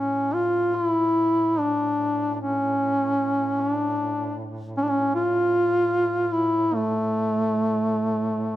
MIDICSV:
0, 0, Header, 1, 3, 480
1, 0, Start_track
1, 0, Tempo, 829876
1, 1392, Tempo, 785340
1, 1393, Time_signature, 3, 2, 24, 8
1, 3792, Tempo, 834492
1, 5074, End_track
2, 0, Start_track
2, 0, Title_t, "Duduk"
2, 0, Program_c, 0, 69
2, 0, Note_on_c, 0, 61, 73
2, 195, Note_on_c, 0, 65, 81
2, 204, Note_off_c, 0, 61, 0
2, 434, Note_off_c, 0, 65, 0
2, 434, Note_on_c, 0, 65, 85
2, 497, Note_off_c, 0, 65, 0
2, 497, Note_on_c, 0, 64, 85
2, 921, Note_on_c, 0, 62, 70
2, 930, Note_off_c, 0, 64, 0
2, 1355, Note_off_c, 0, 62, 0
2, 1355, Note_on_c, 0, 62, 52
2, 1371, Note_on_c, 0, 61, 77
2, 1380, Note_off_c, 0, 62, 0
2, 2120, Note_on_c, 0, 62, 62
2, 2129, Note_off_c, 0, 61, 0
2, 2595, Note_off_c, 0, 62, 0
2, 2838, Note_on_c, 0, 61, 76
2, 2870, Note_on_c, 0, 62, 68
2, 2879, Note_off_c, 0, 61, 0
2, 2916, Note_on_c, 0, 61, 82
2, 2925, Note_off_c, 0, 62, 0
2, 3065, Note_off_c, 0, 61, 0
2, 3069, Note_on_c, 0, 65, 98
2, 3787, Note_on_c, 0, 64, 80
2, 3796, Note_off_c, 0, 65, 0
2, 4029, Note_on_c, 0, 57, 77
2, 4038, Note_off_c, 0, 64, 0
2, 5074, Note_off_c, 0, 57, 0
2, 5074, End_track
3, 0, Start_track
3, 0, Title_t, "Duduk"
3, 0, Program_c, 1, 69
3, 0, Note_on_c, 1, 45, 43
3, 5074, Note_off_c, 1, 45, 0
3, 5074, End_track
0, 0, End_of_file